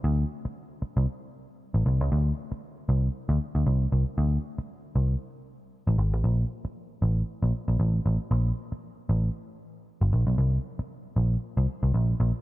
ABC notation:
X:1
M:4/4
L:1/16
Q:"Swing 16ths" 1/4=116
K:Gmix
V:1 name="Picked electric bass" clef=bass
D,,2 z4 z C,, z4 z A,,, C,, ^C,, | D,,2 z4 C,,2 z D,, z D,, C,,2 C,, z | D,,2 z4 C,,2 z4 z A,,, ^G,,, A,,, | _B,,,2 z4 A,,,2 z B,,, z B,,, A,,,2 A,,, z |
_B,,,2 z4 A,,,2 z4 z G,,, B,,, =B,,, | C,,2 z4 _B,,,2 z C,, z C,, B,,,2 B,,, z |]